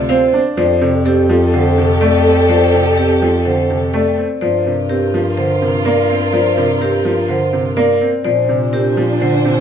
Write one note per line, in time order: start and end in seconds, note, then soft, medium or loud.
0.00 0.44 D2 loud
0.00 0.16 C3 loud
0.00 0.29 F4 loud
0.00 0.29 F4 medium
0.00 0.29 A4 medium
0.09 0.40 C4 loud
0.09 0.40 C5 loud
0.09 0.40 F5 loud
0.34 0.64 D4 medium
0.57 4.28 F2 loud
0.57 0.88 F3 loud
0.57 4.13 G4 medium
0.57 4.13 A4 loud
0.57 0.88 C5 medium
0.57 0.89 D5 loud
0.81 1.12 C3 loud
1.05 1.36 C4 loud
1.05 1.36 G4 medium
1.05 1.37 A4 medium
1.29 1.60 F3 loud
1.53 1.85 D3 medium
1.53 1.84 C5 medium
1.53 1.85 C5 medium
1.78 2.09 C3 medium
2.01 2.32 A3 loud
2.01 2.32 A4 loud
2.01 2.32 D5 loud
2.25 2.56 C4 medium
2.49 2.80 F3 loud
2.49 2.80 C5 medium
2.49 2.80 D5 loud
2.74 3.05 C3 medium
2.97 3.29 C4 medium
2.97 3.28 G4 medium
2.97 3.28 A4 medium
3.22 3.53 F3 loud
3.45 3.77 D3 medium
3.45 3.76 C5 medium
3.70 4.01 C3 medium
3.94 4.25 A3 medium
3.94 4.25 A4 loud
3.94 4.24 D5 medium
4.18 4.48 C4 medium
4.41 8.12 G2 medium
4.41 4.73 F3 medium
4.41 7.97 F4 medium
4.41 7.97 A#4 medium
4.41 4.72 C5 medium
4.41 4.72 D5 loud
4.66 4.97 C3 medium
4.89 5.21 C4 medium
4.89 5.21 G4 medium
4.89 5.20 A#4 medium
5.14 5.45 F3 loud
5.37 5.69 D3 medium
5.37 5.68 C5 medium
5.37 5.69 C5 medium
5.62 5.93 C3 medium
5.85 6.17 A#3 loud
5.85 6.16 A#4 loud
5.85 6.16 D5 medium
6.10 6.41 C4 medium
6.33 6.64 F3 loud
6.33 6.64 C5 medium
6.33 6.64 D5 loud
6.57 6.88 C3 medium
6.81 7.12 C4 medium
6.81 7.12 G4 medium
6.81 7.13 A#4 medium
7.05 7.36 F3 loud
7.28 7.60 D3 medium
7.28 7.60 C5 medium
7.53 7.84 C3 medium
7.77 8.08 A#3 loud
7.77 8.08 A#4 loud
7.77 8.08 D5 loud
8.01 8.32 C4 medium
8.25 9.60 A#2 medium
8.25 8.56 F3 medium
8.25 9.60 D4 medium
8.25 9.60 C5 medium
8.25 8.57 C5 medium
8.25 8.56 D5 loud
8.49 8.80 C3 medium
8.73 9.04 C4 medium
8.73 9.04 G4 medium
8.73 9.04 A#4 medium
8.97 9.28 F3 loud
9.21 9.52 D3 medium
9.21 9.53 C5 medium
9.45 9.60 C3 medium